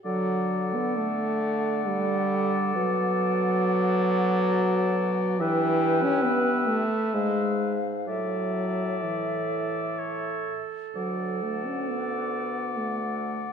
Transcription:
0.04 bassoon D3, french horn F#3, clarinet A4, oboe D5, flute F#5
0.75 french horn B3
0.97 french horn A3
1.87 french horn G3
2.76 bassoon B2, french horn F#3
5.39 bassoon G2, french horn E3, clarinet B4, oboe E5, flute G5
6.04 french horn C#4
6.24 french horn B3
6.67 french horn A3
7.14 bassoon G#2, french horn G#3, flute F5
8.07 bassoon A2, french horn F#3, clarinet A4, oboe D5, flute E5
9.04 french horn E3
9.99 oboe C#5
10.95 bassoon D2, french horn F#3, oboe D5, flute F#5
11.43 french horn A3
11.66 french horn C#4
11.89 french horn B3
12.77 french horn A3

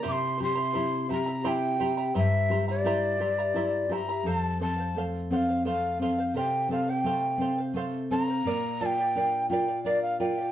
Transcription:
0.02 nylon-string guitar C3, charango E4 G4 C5 E5 A#5
0.08 quena D6
0.12 quena C6
0.38 charango E4 C5 E5 A#5, nylon-string guitar G4
0.43 quena C6
0.55 charango E4 E5 A#5
0.73 charango E4 C5 E5 A#5, nylon-string guitar E4
1.09 charango E4 C5 E5 A#5, nylon-string guitar G4, quena A#5
1.26 charango E4 E5 A#5
1.44 nylon-string guitar E4, charango E4 G4 C5 E5 A#5, quena G5
1.80 charango E4 C5 E5 A#5, nylon-string guitar G4
1.97 charango E4 E5 A#5
2.14 nylon-string guitar G2, charango E4 C5 E5 A#5, quena E5
2.50 charango E4 C5 E5 A#5, nylon-string guitar G4
2.68 charango E4 E5 A#5, quena D5
2.84 nylon-string guitar E4, charango E4 G4 C5 E5 A#5
3.19 charango E4 C5 E5 A#5, nylon-string guitar G4
3.38 charango E4 E5 A#5
3.54 nylon-string guitar E4, charango E4 C5 E5 A#5
3.89 charango E4 C5 E5 A#5, nylon-string guitar G4, quena A#5
4.09 charango E4 E5 A#5
4.24 nylon-string guitar F2, charango A4 C5 F5, quena A5
4.60 nylon-string guitar C4, charango A4 C5 F5, quena A5
4.78 charango C5 F5
4.95 nylon-string guitar A3, charango A4 C5 F5
5.30 nylon-string guitar C4, charango A4 C5 F5, quena F#5
5.36 quena F5
5.49 charango C5 F5
5.65 nylon-string guitar A3, charango A4 C5 F5, quena F5
5.99 nylon-string guitar C4, charango A4 C5 F5, quena F5
6.18 charango C5 F5
6.34 nylon-string guitar C3, charango A4 C5 F5, quena G5
6.68 nylon-string guitar C4, charango A4 C5 F5
6.72 quena F5
6.88 charango C5 F5, quena G5
7.04 nylon-string guitar A3, charango A4 C5 F5
7.38 nylon-string guitar C4, charango A4 C5
7.42 charango F5
7.58 charango C5 F5
7.74 nylon-string guitar A3, charango A4 C5 F5
8.10 nylon-string guitar C4, charango A4 C5 F5, quena A#5
8.28 charango C5 F5
8.45 nylon-string guitar A#2, charango A#4 D5 F5
8.81 nylon-string guitar F4, charango A#4 D5 F5, quena A5
8.86 quena G5
8.99 charango D5 F5
9.15 nylon-string guitar D4, charango A#4 D5 F5
9.50 nylon-string guitar F4, charango A#4 D5 F5, quena G5
9.68 charango D5 F5
9.85 nylon-string guitar D4, charango A#4 D5 F5, quena D5
10.02 quena F5
10.20 nylon-string guitar F4, charango A#4 D5 F5, quena G5
10.38 charango D5 F5

